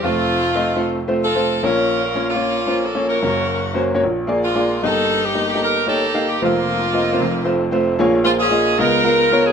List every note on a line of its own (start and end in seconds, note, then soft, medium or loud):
0.03 1.59 F1 medium
0.03 1.59 F2 medium
0.03 0.39 A3 medium
0.03 0.96 A3 medium
0.03 0.39 C4 medium
0.03 0.96 C4 medium
0.03 1.00 F4 loud
0.03 0.40 F4 medium
0.03 0.40 C5 medium
0.55 0.71 A3 medium
0.55 0.71 C4 medium
0.55 0.71 F4 medium
0.55 0.71 D#5 medium
0.76 0.97 A3 medium
0.76 0.97 C4 medium
0.76 0.97 F4 medium
0.76 0.97 A4 medium
1.08 1.24 A3 medium
1.08 1.24 C4 medium
1.08 1.25 F4 medium
1.08 1.25 C5 medium
1.24 1.61 C4 medium
1.24 1.61 F4 medium
1.24 1.61 A4 medium
1.35 1.56 A3 medium
1.35 1.56 C4 medium
1.35 1.56 F4 medium
1.35 1.57 C5 medium
1.63 3.19 A#1 medium
1.63 3.19 A#2 medium
1.63 1.99 A#3 medium
1.63 1.99 C#4 medium
1.63 2.28 C#4 medium
1.63 1.99 F4 medium
1.63 2.28 F4 medium
1.63 2.03 A#4 medium
1.63 1.99 C#5 medium
2.05 2.27 A#4 medium
2.15 2.31 A#3 medium
2.15 2.31 C#4 medium
2.15 2.31 F4 medium
2.15 2.31 C#5 medium
2.29 3.04 A#3 medium
2.29 3.04 C#4 medium
2.29 2.84 F4 medium
2.35 2.56 A#3 medium
2.35 2.56 C#4 medium
2.35 2.56 F4 medium
2.35 2.57 C#5 medium
2.67 2.83 A#3 medium
2.67 2.83 C#4 medium
2.67 2.84 F4 medium
2.67 2.84 C5 medium
2.85 3.09 A4 medium
2.94 3.15 A#3 medium
2.94 3.16 C#4 medium
2.94 3.16 F4 medium
2.94 3.16 C#5 medium
3.09 3.84 C#4 medium
3.09 3.84 F#4 medium
3.09 3.63 A#4 medium
3.22 3.99 F#1 medium
3.22 3.99 F#2 medium
3.22 3.58 A#3 medium
3.22 3.58 C#4 medium
3.22 3.59 F#4 medium
3.22 3.59 C#5 medium
3.74 3.90 A#3 medium
3.74 3.90 C#4 medium
3.74 3.90 F#4 medium
3.74 3.90 C5 medium
3.94 4.02 A#3 medium
3.94 4.02 C#4 medium
3.94 4.03 F#4 medium
3.94 4.03 C#5 medium
4.03 4.78 A#1 medium
4.03 4.79 A#2 medium
4.27 4.43 A#3 medium
4.27 4.44 F4 medium
4.27 4.44 G#4 medium
4.27 4.44 D5 medium
4.44 4.80 G#3 medium
4.44 4.80 D4 medium
4.44 4.81 F4 medium
4.55 4.75 A#3 medium
4.55 4.76 F4 medium
4.55 4.76 G#4 medium
4.55 4.76 D5 medium
4.83 6.38 G1 medium
4.83 6.38 G2 medium
4.83 5.18 A#3 medium
4.83 5.18 D#4 medium
4.83 5.59 D#4 medium
4.83 5.19 G4 medium
4.83 5.23 A4 loud
4.83 5.19 D#5 medium
5.24 5.47 G4 medium
5.34 5.50 A#3 medium
5.34 5.50 D#4 medium
5.34 5.50 G4 medium
5.34 5.50 D#5 medium
5.49 5.62 G4 medium
5.54 5.75 A#3 medium
5.54 5.75 D#4 medium
5.54 5.76 G4 medium
5.54 5.76 A4 medium
5.63 5.87 D#4 medium
5.63 6.26 G4 medium
5.63 5.86 A#4 medium
5.87 6.03 A#3 medium
5.87 6.03 D#4 medium
5.87 6.39 D#4 medium
5.87 6.03 G4 medium
5.87 6.24 A4 loud
5.87 6.03 C#5 medium
6.14 6.34 A#3 medium
6.14 6.35 D#4 medium
6.14 6.35 G4 medium
6.14 6.35 F5 medium
6.28 6.42 G4 medium
6.41 7.17 F1 medium
6.41 7.17 F2 medium
6.41 6.47 A3 medium
6.41 7.57 A#3 medium
6.41 6.77 C4 medium
6.41 7.58 C4 medium
6.41 6.78 F4 medium
6.41 7.57 F4 medium
6.41 6.78 C5 medium
6.46 6.79 A#3 medium
6.93 7.09 A#3 medium
6.93 7.09 C4 medium
6.93 7.09 F4 medium
6.93 7.09 D#5 medium
7.12 7.20 A#3 medium
7.12 7.21 C4 medium
7.12 7.21 F4 medium
7.12 7.21 C5 medium
7.20 7.96 F1 medium
7.20 7.96 F2 medium
7.44 7.61 A3 medium
7.44 7.61 C4 medium
7.44 7.61 F4 medium
7.44 7.61 C5 medium
7.71 7.93 A3 medium
7.71 7.93 C4 medium
7.71 7.93 F4 medium
7.71 7.93 C5 medium
7.99 8.75 A#1 medium
7.99 8.75 A#2 medium
7.99 8.17 A#3 medium
7.99 8.17 F4 medium
7.99 8.17 G#4 medium
7.99 8.17 C#5 loud
8.24 8.40 A#3 medium
8.24 8.41 F4 medium
8.24 8.32 F4 medium
8.24 8.41 G#4 medium
8.24 8.41 C5 medium
8.39 8.77 C#4 medium
8.39 8.77 F4 medium
8.39 8.77 G#4 medium
8.50 8.72 A#3 medium
8.50 8.72 F4 medium
8.50 8.72 G#4 medium
8.50 8.72 D#5 medium
8.79 9.52 C#2 medium
8.79 9.52 C#3 medium
8.79 8.96 B3 medium
8.79 9.52 D#4 medium
8.79 8.96 F4 medium
8.79 9.52 F4 medium
8.79 9.44 A#4 loud
8.79 8.97 A#4 medium
8.79 8.97 D#5 medium
9.04 9.20 B3 medium
9.04 9.20 F4 medium
9.04 9.20 A#4 medium
9.04 9.20 F5 medium
9.32 9.52 B3 medium
9.32 9.52 F4 medium
9.32 9.52 A#4 medium
9.32 9.52 C#5 medium
9.45 9.52 G#4 loud